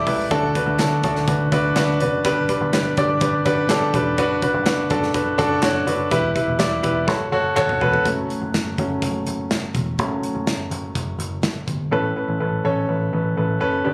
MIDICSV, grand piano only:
0, 0, Header, 1, 2, 480
1, 0, Start_track
1, 0, Tempo, 483481
1, 313, Time_signature, 4, 2, 24, 8
1, 13836, End_track
2, 0, Start_track
2, 0, Title_t, "Grand piano"
2, 0, Program_c, 0, 0
2, 0, Control_c, 0, 64, 127
2, 0, Note_on_c, 0, 52, 66
2, 0, Note_on_c, 0, 64, 108
2, 0, Note_on_c, 0, 67, 101
2, 0, Note_on_c, 0, 69, 115
2, 0, Note_on_c, 0, 71, 98
2, 0, Note_on_c, 0, 74, 120
2, 62, Note_off_c, 0, 64, 0
2, 62, Note_on_c, 0, 64, 87
2, 63, Note_off_c, 0, 67, 0
2, 63, Note_on_c, 0, 67, 76
2, 66, Note_off_c, 0, 71, 0
2, 66, Note_on_c, 0, 71, 96
2, 239, Note_off_c, 0, 64, 0
2, 240, Note_off_c, 0, 67, 0
2, 241, Note_off_c, 0, 71, 0
2, 308, Note_on_c, 0, 62, 107
2, 310, Note_off_c, 0, 69, 0
2, 310, Note_on_c, 0, 69, 122
2, 311, Note_on_c, 0, 50, 69
2, 312, Note_on_c, 0, 66, 95
2, 327, Control_c, 0, 64, 0
2, 330, Note_off_c, 0, 74, 0
2, 334, Note_off_c, 0, 52, 0
2, 482, Note_off_c, 0, 62, 0
2, 483, Note_off_c, 0, 69, 0
2, 484, Note_off_c, 0, 66, 0
2, 505, Control_c, 0, 64, 127
2, 555, Note_on_c, 0, 66, 73
2, 556, Note_on_c, 0, 62, 83
2, 557, Note_on_c, 0, 71, 95
2, 726, Note_off_c, 0, 66, 0
2, 727, Note_off_c, 0, 62, 0
2, 727, Note_off_c, 0, 71, 0
2, 795, Note_on_c, 0, 62, 91
2, 796, Note_on_c, 0, 66, 83
2, 800, Note_on_c, 0, 69, 99
2, 966, Note_off_c, 0, 62, 0
2, 967, Note_off_c, 0, 66, 0
2, 969, Note_off_c, 0, 69, 0
2, 993, Note_off_c, 0, 50, 0
2, 1033, Note_on_c, 0, 62, 93
2, 1033, Note_on_c, 0, 66, 80
2, 1035, Note_on_c, 0, 69, 93
2, 1205, Note_off_c, 0, 62, 0
2, 1205, Note_off_c, 0, 66, 0
2, 1206, Note_off_c, 0, 69, 0
2, 1275, Note_on_c, 0, 62, 74
2, 1275, Note_on_c, 0, 66, 74
2, 1280, Note_on_c, 0, 71, 82
2, 1446, Note_off_c, 0, 62, 0
2, 1446, Note_off_c, 0, 66, 0
2, 1448, Note_off_c, 0, 71, 0
2, 1512, Note_on_c, 0, 62, 103
2, 1513, Note_on_c, 0, 71, 109
2, 1514, Note_on_c, 0, 66, 90
2, 1684, Note_off_c, 0, 62, 0
2, 1685, Note_off_c, 0, 66, 0
2, 1685, Note_off_c, 0, 71, 0
2, 1751, Note_on_c, 0, 62, 108
2, 1755, Note_on_c, 0, 66, 100
2, 1756, Note_on_c, 0, 71, 122
2, 1924, Note_off_c, 0, 62, 0
2, 1926, Note_off_c, 0, 66, 0
2, 1927, Note_off_c, 0, 71, 0
2, 1996, Note_on_c, 0, 62, 92
2, 1999, Note_on_c, 0, 66, 77
2, 2002, Note_on_c, 0, 71, 102
2, 2167, Note_off_c, 0, 62, 0
2, 2168, Note_off_c, 0, 66, 0
2, 2170, Note_off_c, 0, 71, 0
2, 2233, Note_on_c, 0, 43, 77
2, 2235, Note_on_c, 0, 62, 105
2, 2236, Note_on_c, 0, 67, 93
2, 2238, Note_on_c, 0, 71, 124
2, 2246, Control_c, 0, 64, 0
2, 2406, Note_off_c, 0, 62, 0
2, 2407, Note_off_c, 0, 67, 0
2, 2408, Note_off_c, 0, 71, 0
2, 2426, Control_c, 0, 64, 127
2, 2473, Note_on_c, 0, 62, 77
2, 2474, Note_on_c, 0, 71, 93
2, 2476, Note_on_c, 0, 67, 80
2, 2645, Note_off_c, 0, 62, 0
2, 2646, Note_off_c, 0, 71, 0
2, 2647, Note_off_c, 0, 67, 0
2, 2716, Note_on_c, 0, 62, 92
2, 2718, Note_on_c, 0, 71, 101
2, 2720, Note_on_c, 0, 67, 83
2, 2887, Note_off_c, 0, 62, 0
2, 2888, Note_off_c, 0, 71, 0
2, 2889, Note_off_c, 0, 67, 0
2, 2914, Note_off_c, 0, 43, 0
2, 2956, Note_on_c, 0, 62, 92
2, 2958, Note_on_c, 0, 67, 78
2, 2960, Note_on_c, 0, 74, 99
2, 3127, Note_off_c, 0, 62, 0
2, 3128, Note_off_c, 0, 67, 0
2, 3129, Note_off_c, 0, 74, 0
2, 3193, Note_on_c, 0, 62, 86
2, 3197, Note_on_c, 0, 67, 75
2, 3198, Note_on_c, 0, 71, 88
2, 3365, Note_off_c, 0, 62, 0
2, 3367, Note_off_c, 0, 67, 0
2, 3367, Note_off_c, 0, 71, 0
2, 3430, Note_on_c, 0, 62, 107
2, 3433, Note_on_c, 0, 71, 117
2, 3434, Note_on_c, 0, 67, 93
2, 3435, Note_on_c, 0, 78, 65
2, 3604, Note_off_c, 0, 62, 0
2, 3605, Note_off_c, 0, 71, 0
2, 3606, Note_off_c, 0, 67, 0
2, 3658, Note_off_c, 0, 78, 0
2, 3676, Note_on_c, 0, 67, 101
2, 3677, Note_on_c, 0, 69, 115
2, 3678, Note_on_c, 0, 79, 73
2, 3679, Note_on_c, 0, 62, 109
2, 3847, Note_off_c, 0, 67, 0
2, 3847, Note_off_c, 0, 69, 0
2, 3848, Note_off_c, 0, 62, 0
2, 3899, Note_off_c, 0, 79, 0
2, 3919, Note_on_c, 0, 62, 93
2, 3919, Note_on_c, 0, 67, 85
2, 3919, Note_on_c, 0, 83, 77
2, 3922, Note_on_c, 0, 71, 103
2, 4088, Note_off_c, 0, 62, 0
2, 4088, Note_off_c, 0, 67, 0
2, 4090, Note_off_c, 0, 71, 0
2, 4139, Note_off_c, 0, 83, 0
2, 4155, Note_on_c, 0, 62, 105
2, 4157, Note_on_c, 0, 66, 102
2, 4157, Note_on_c, 0, 71, 116
2, 4166, Control_c, 0, 64, 0
2, 4326, Note_off_c, 0, 62, 0
2, 4327, Note_off_c, 0, 66, 0
2, 4327, Note_off_c, 0, 71, 0
2, 4332, Control_c, 0, 64, 127
2, 4395, Note_on_c, 0, 62, 85
2, 4397, Note_on_c, 0, 66, 77
2, 4399, Note_on_c, 0, 71, 99
2, 4566, Note_off_c, 0, 62, 0
2, 4567, Note_off_c, 0, 66, 0
2, 4568, Note_off_c, 0, 71, 0
2, 4632, Note_on_c, 0, 62, 94
2, 4633, Note_on_c, 0, 66, 88
2, 4636, Note_on_c, 0, 71, 98
2, 4805, Note_off_c, 0, 62, 0
2, 4805, Note_off_c, 0, 66, 0
2, 4807, Note_off_c, 0, 71, 0
2, 4869, Note_on_c, 0, 62, 94
2, 4872, Note_on_c, 0, 66, 85
2, 4873, Note_on_c, 0, 69, 105
2, 5043, Note_off_c, 0, 62, 0
2, 5045, Note_off_c, 0, 66, 0
2, 5045, Note_off_c, 0, 69, 0
2, 5104, Note_on_c, 0, 66, 73
2, 5106, Note_on_c, 0, 62, 77
2, 5107, Note_on_c, 0, 71, 92
2, 5281, Note_off_c, 0, 62, 0
2, 5281, Note_off_c, 0, 66, 0
2, 5282, Note_off_c, 0, 71, 0
2, 5341, Note_on_c, 0, 62, 115
2, 5345, Note_on_c, 0, 66, 98
2, 5347, Note_on_c, 0, 69, 117
2, 5519, Note_off_c, 0, 62, 0
2, 5521, Note_off_c, 0, 66, 0
2, 5522, Note_off_c, 0, 69, 0
2, 5584, Note_on_c, 0, 62, 108
2, 5586, Note_on_c, 0, 73, 110
2, 5589, Note_on_c, 0, 66, 108
2, 5761, Note_off_c, 0, 62, 0
2, 5762, Note_off_c, 0, 73, 0
2, 5763, Note_off_c, 0, 66, 0
2, 5824, Note_on_c, 0, 66, 81
2, 5827, Note_on_c, 0, 62, 93
2, 5828, Note_on_c, 0, 71, 98
2, 6001, Note_off_c, 0, 66, 0
2, 6002, Note_off_c, 0, 62, 0
2, 6003, Note_off_c, 0, 71, 0
2, 6068, Note_on_c, 0, 64, 106
2, 6072, Note_on_c, 0, 52, 71
2, 6073, Note_on_c, 0, 67, 99
2, 6073, Note_on_c, 0, 71, 115
2, 6088, Control_c, 0, 64, 0
2, 6242, Note_off_c, 0, 64, 0
2, 6245, Note_off_c, 0, 67, 0
2, 6245, Note_off_c, 0, 71, 0
2, 6279, Control_c, 0, 64, 127
2, 6306, Note_on_c, 0, 64, 85
2, 6310, Note_on_c, 0, 67, 73
2, 6312, Note_on_c, 0, 71, 89
2, 6482, Note_off_c, 0, 64, 0
2, 6483, Note_off_c, 0, 67, 0
2, 6484, Note_off_c, 0, 71, 0
2, 6542, Note_on_c, 0, 64, 95
2, 6545, Note_on_c, 0, 67, 83
2, 6545, Note_on_c, 0, 74, 96
2, 6719, Note_off_c, 0, 64, 0
2, 6721, Note_off_c, 0, 67, 0
2, 6721, Note_off_c, 0, 74, 0
2, 6753, Note_off_c, 0, 52, 0
2, 6777, Note_on_c, 0, 64, 88
2, 6781, Note_on_c, 0, 67, 84
2, 6783, Note_on_c, 0, 71, 100
2, 6957, Note_off_c, 0, 64, 0
2, 6959, Note_off_c, 0, 67, 0
2, 6960, Note_off_c, 0, 71, 0
2, 7023, Note_on_c, 0, 69, 81
2, 7024, Note_on_c, 0, 66, 80
2, 7025, Note_on_c, 0, 73, 84
2, 7046, Control_c, 0, 64, 0
2, 7200, Note_off_c, 0, 69, 0
2, 7201, Note_off_c, 0, 66, 0
2, 7201, Note_off_c, 0, 73, 0
2, 7246, Control_c, 0, 64, 127
2, 7270, Note_on_c, 0, 69, 94
2, 7271, Note_on_c, 0, 66, 105
2, 7272, Note_on_c, 0, 73, 110
2, 7444, Note_off_c, 0, 66, 0
2, 7444, Note_off_c, 0, 69, 0
2, 7445, Note_off_c, 0, 73, 0
2, 7504, Note_on_c, 0, 69, 101
2, 7505, Note_on_c, 0, 66, 110
2, 7511, Note_on_c, 0, 73, 123
2, 7681, Note_off_c, 0, 66, 0
2, 7681, Note_off_c, 0, 69, 0
2, 7684, Note_off_c, 0, 73, 0
2, 7757, Note_on_c, 0, 66, 85
2, 7761, Note_on_c, 0, 69, 77
2, 7761, Note_on_c, 0, 71, 104
2, 7927, Note_off_c, 0, 66, 0
2, 7929, Note_off_c, 0, 69, 0
2, 7929, Note_off_c, 0, 71, 0
2, 7992, Note_on_c, 0, 54, 49
2, 8000, Note_on_c, 0, 57, 47
2, 8004, Control_c, 0, 64, 0
2, 8007, Note_on_c, 0, 61, 53
2, 8178, Control_c, 0, 64, 127
2, 8312, Note_off_c, 0, 54, 0
2, 8316, Note_off_c, 0, 57, 0
2, 8319, Note_off_c, 0, 61, 0
2, 8722, Note_on_c, 0, 54, 46
2, 8728, Note_on_c, 0, 57, 42
2, 8728, Note_on_c, 0, 61, 54
2, 8934, Note_off_c, 0, 54, 0
2, 8937, Note_off_c, 0, 57, 0
2, 8937, Note_off_c, 0, 61, 0
2, 9917, Note_on_c, 0, 54, 48
2, 9923, Note_on_c, 0, 57, 44
2, 9928, Note_on_c, 0, 61, 55
2, 10235, Note_off_c, 0, 54, 0
2, 10238, Note_off_c, 0, 57, 0
2, 10241, Note_off_c, 0, 61, 0
2, 11834, Note_on_c, 0, 69, 76
2, 11835, Note_on_c, 0, 45, 58
2, 11837, Note_on_c, 0, 61, 80
2, 11840, Note_on_c, 0, 71, 94
2, 11845, Control_c, 0, 64, 0
2, 12006, Note_off_c, 0, 69, 0
2, 12008, Note_off_c, 0, 61, 0
2, 12009, Note_off_c, 0, 71, 0
2, 12044, Control_c, 0, 64, 127
2, 12074, Note_on_c, 0, 61, 67
2, 12076, Note_on_c, 0, 69, 58
2, 12081, Note_on_c, 0, 71, 75
2, 12246, Note_off_c, 0, 61, 0
2, 12247, Note_off_c, 0, 69, 0
2, 12250, Note_off_c, 0, 71, 0
2, 12313, Note_on_c, 0, 61, 70
2, 12314, Note_on_c, 0, 69, 64
2, 12315, Note_on_c, 0, 71, 79
2, 12486, Note_off_c, 0, 61, 0
2, 12486, Note_off_c, 0, 69, 0
2, 12487, Note_off_c, 0, 71, 0
2, 12515, Note_off_c, 0, 45, 0
2, 12557, Note_on_c, 0, 69, 80
2, 12558, Note_on_c, 0, 61, 95
2, 12558, Note_on_c, 0, 73, 96
2, 12728, Note_off_c, 0, 61, 0
2, 12728, Note_off_c, 0, 69, 0
2, 12728, Note_off_c, 0, 73, 0
2, 12793, Note_on_c, 0, 61, 64
2, 12794, Note_on_c, 0, 69, 57
2, 12796, Note_on_c, 0, 71, 67
2, 12966, Note_off_c, 0, 61, 0
2, 12966, Note_off_c, 0, 69, 0
2, 12967, Note_off_c, 0, 71, 0
2, 13036, Note_on_c, 0, 61, 64
2, 13038, Note_on_c, 0, 69, 58
2, 13040, Note_on_c, 0, 71, 71
2, 13207, Note_off_c, 0, 61, 0
2, 13208, Note_off_c, 0, 69, 0
2, 13209, Note_off_c, 0, 71, 0
2, 13276, Note_on_c, 0, 69, 60
2, 13277, Note_on_c, 0, 61, 66
2, 13279, Note_on_c, 0, 71, 72
2, 13447, Note_off_c, 0, 69, 0
2, 13448, Note_off_c, 0, 61, 0
2, 13449, Note_off_c, 0, 71, 0
2, 13505, Note_on_c, 0, 61, 94
2, 13508, Note_on_c, 0, 69, 83
2, 13511, Note_on_c, 0, 71, 102
2, 13682, Note_off_c, 0, 61, 0
2, 13684, Note_off_c, 0, 69, 0
2, 13685, Note_off_c, 0, 71, 0
2, 13744, Note_on_c, 0, 67, 81
2, 13746, Note_on_c, 0, 43, 54
2, 13747, Note_on_c, 0, 62, 81
2, 13749, Note_on_c, 0, 71, 88
2, 13769, Control_c, 0, 64, 0
2, 13836, Note_off_c, 0, 43, 0
2, 13836, Note_off_c, 0, 62, 0
2, 13836, Note_off_c, 0, 67, 0
2, 13836, Note_off_c, 0, 71, 0
2, 13836, End_track
0, 0, End_of_file